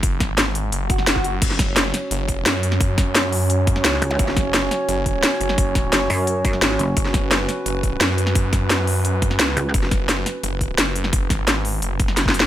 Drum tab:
CC |------------------------------------------------|x-----------------------------------------------|------------------------------------------------|------------------------------------------------|
HH |x-----x-----x-----x-----x-----x-----x-----x-----|x-----x-----x-----x-----x-----x-----x-----x-----|x-----x-----x-----o-----x-----x-----x-----x-----|x-----x-----x-----x-----x-----x-----x-----x-----|
SD |------o-----o--------------------o--o--o--------|---o--o-----o-----o-----------------o--------o--|------o-----o--------------------o--o--o--------|---o--o-----o-----o-----------------o--------o--|
BD |o-----o-----------------------o--------o--------|o-----o-----------------------o-----------------|o-----o-----------------------o-----------------|o-----o-----------------------o-----------------|

CC |------------------------------------------------|------------------------------------------------|------------------------------------------------|------------------------------------------------|
HH |x-----x-----x-----o-----x-----x-----x-----x-----|x-----x-----x-----x-----x-----x-----x-----x-----|x-----x-----x-----o-----x-----x-----x-----x-----|x-----x-----x-----x-----x-----x-----x-----x-----|
SD |------o-----o--------------------o--o--o--------|---o--o-----o-----o-----------------o--------o--|------o-----o--------------------o--o--o--------|---o--o-----o-----o-----------------o--------o--|
BD |o-----o-----------------------o-----------------|o-----o-----------------------o-----------------|o-----o-----------------------o-----------------|o-----o-----------------------o-----------------|

CC |------------------------------------------------|
HH |x-----x-----x-----o-----x-----x-----x-----x-----|
SD |------o-----o--------------------o--o---o---o---|
BD |o-----o-----------------------o--------o--------|